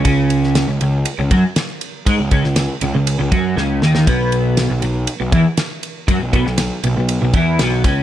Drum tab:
RD |x-x-x-x-x-x-x-x-|x-x-x-x-x-x-----|x-x-x-x-x-x-x-x-|x-x-x-x-x-x-x-x-|
SD |---oo-------o---|---oo-------o-oo|----o-------o---|---oo-------o-o-|
BD |o---------o-----|o-o-------o-----|o---------o-----|o-o-------o---o-|